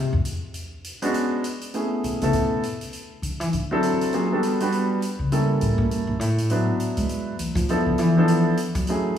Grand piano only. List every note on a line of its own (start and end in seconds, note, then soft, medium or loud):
1.02 1.42 G#3 medium
1.02 1.42 B3 medium
1.02 1.42 C#4 medium
1.02 1.42 D4 medium
1.02 1.42 F#4 medium
1.74 2.18 A3 soft
1.74 2.18 B3 soft
1.74 2.18 C#4 soft
1.74 2.19 E4 soft
1.74 2.19 G#4 medium
2.22 2.61 A3 medium
2.22 2.62 B3 medium
2.22 2.61 C#4 soft
2.22 2.62 E4 medium
2.22 2.62 A4 medium
3.71 4.10 F#3 medium
3.71 4.10 C4 medium
3.71 4.11 D4 medium
3.71 4.11 E4 medium
3.71 4.11 A4 medium
4.13 4.29 F#3 medium
4.13 4.29 A#3 soft
4.13 4.29 C#4 soft
4.13 4.29 F4 medium
4.13 4.29 G#4 medium
4.32 4.57 G3 medium
4.32 4.57 B3 medium
4.32 4.58 D4 medium
4.32 4.58 F#4 soft
4.32 4.58 A4 medium
4.61 5.00 G3 medium
4.61 5.00 B3 medium
4.61 5.00 D4 medium
4.61 5.00 F#4 medium
4.61 5.00 B4 medium
5.32 6.14 G3 medium
5.32 6.14 A#3 soft
5.32 6.14 C#4 soft
5.32 6.14 E4 soft
5.32 6.14 A4 medium
6.50 7.32 F#3 medium
6.50 7.32 B3 soft
6.50 7.33 D4 medium
6.50 7.33 E4 soft
6.50 7.33 B4 medium
7.69 8.13 F3 medium
7.69 8.13 B3 medium
7.69 8.14 D4 soft
7.69 8.14 E4 soft
7.69 8.14 A4 medium
8.17 8.56 F3 medium
8.17 8.56 B3 medium
8.17 8.56 D4 medium
8.17 8.57 E4 medium
8.17 8.57 A4 medium
8.88 9.18 F#3 soft
8.88 9.18 A3 soft
8.88 9.18 C#4 soft
8.88 9.18 E4 soft
8.88 9.18 G#4 medium